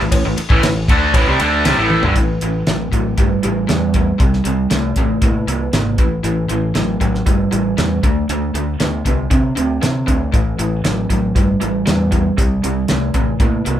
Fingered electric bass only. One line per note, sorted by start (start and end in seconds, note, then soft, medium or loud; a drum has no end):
0.01 0.11 A1 medium
0.12 0.23 A1 medium
0.26 0.37 A1 medium
0.39 muted fingered electric bass stroke soft
0.50 0.62 A1 medium
0.63 0.87 A1 medium
0.89 1.12 D2 medium
1.14 1.26 A1 medium
1.27 1.39 C2 loud
1.41 1.63 D2 medium
1.67 1.77 C2 medium
1.78 2.01 A1 medium
2.04 2.15 G1 loud
2.16 2.36 A1 medium
2.43 2.63 A1 medium
2.68 2.88 A1 medium
2.92 3.13 A1 medium
3.18 3.39 G1 medium
3.45 3.65 A1 medium
3.70 4.11 E2 medium
4.20 4.41 C2 medium
4.46 4.66 C2 medium
4.72 4.92 C2 medium
4.97 5.17 A1 medium
5.23 5.43 A2 medium
5.47 5.68 C2 medium
5.73 5.99 G#1 medium
5.99 6.19 A1 medium
6.24 6.45 A1 medium
6.50 6.71 A1 medium
6.76 6.97 A1 medium
7.01 7.22 A1 medium
7.27 7.47 G1 medium
7.53 7.73 A1 medium
7.78 7.99 E2 medium
8.04 8.24 D2 medium
8.29 8.50 D2 medium
8.54 8.75 D2 medium
8.81 9.01 D2 medium
9.06 9.27 C2 medium
9.31 9.52 C3 medium
9.58 9.78 D2 medium
9.84 10.04 C3 medium
10.08 10.29 D2 medium
10.34 10.54 A1 medium
10.59 10.80 A1 medium
10.86 11.06 A1 medium
11.10 11.31 A1 medium
11.36 11.56 G1 medium
11.62 11.83 A1 medium
11.88 12.29 E2 medium
12.39 12.59 C2 medium
12.65 12.85 C2 medium
12.91 13.11 C2 medium
13.15 13.35 A1 medium
13.40 13.61 A2 medium
13.67 13.80 C2 medium